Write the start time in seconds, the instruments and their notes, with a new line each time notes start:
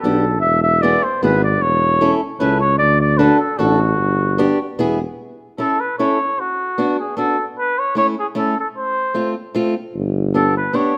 0.00 tuba B1, steel-string acoustic guitar B3, flugelhorn A4
0.05 steel-string acoustic guitar D4 G4
0.40 tuba E1, flugelhorn E5
0.63 flugelhorn E5
0.82 steel-string acoustic guitar B3 E4 G#4, flugelhorn D5
1.03 flugelhorn C5
1.22 tuba G#1, steel-string acoustic guitar B3 E4 G#4, flugelhorn B4
1.44 flugelhorn D5
1.62 tuba E1, flugelhorn C#5
2.01 steel-string acoustic guitar C#4 E4 A4
2.40 tuba C#2, steel-string acoustic guitar C#4 E4 A4, flugelhorn B4
2.61 flugelhorn C#5
2.79 tuba D2, flugelhorn D5
3.00 flugelhorn D5
3.18 steel-string acoustic guitar D4 F#4 A4, flugelhorn B4
3.39 flugelhorn A4
3.58 tuba A1, steel-string acoustic guitar D4 F#4 A4, flugelhorn F#4
3.98 tuba G1
4.38 steel-string acoustic guitar B3 D4 G4
4.78 tuba E1, steel-string acoustic guitar B3 E4 G#4
5.58 steel-string acoustic guitar C#4 E4 A4, flugelhorn A4
5.80 flugelhorn B4
5.99 steel-string acoustic guitar C#4 E4 A4, flugelhorn C#5
6.40 flugelhorn F#4
6.78 steel-string acoustic guitar B3 D4 F#4
6.99 flugelhorn G#4
7.17 steel-string acoustic guitar B3 D4 F#4, flugelhorn A4
7.59 flugelhorn B4
7.79 flugelhorn C#5
7.95 steel-string acoustic guitar A3 C#4 E4, flugelhorn C#5
8.19 flugelhorn G#4
8.35 steel-string acoustic guitar A3 C#4 E4, flugelhorn A4
8.60 flugelhorn A4
8.77 flugelhorn C5
9.14 steel-string acoustic guitar A3 C4 F4
9.55 steel-string acoustic guitar A3 C4 F4
9.95 tuba G1
10.34 steel-string acoustic guitar B3 D4 G4, flugelhorn A4
10.58 flugelhorn B4
10.73 steel-string acoustic guitar B3 D4 G4, flugelhorn C#5